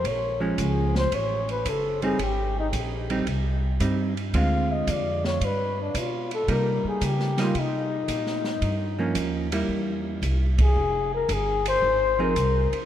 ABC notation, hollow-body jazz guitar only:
X:1
M:4/4
L:1/8
Q:"Swing" 1/4=112
K:Fm
V:1 name="Hollow-body jazz guitar"
z [F,A,D]3 z3 [G,CE] | z3 [G,CE] z2 [G,CE] z | [=D,A,CF]4 z4 | [G,B,E]3 [G,B,E] z4 |
z [F,B,D]2 [G,B,=E]3 z2 | z4 z [F,CEA] z2 |]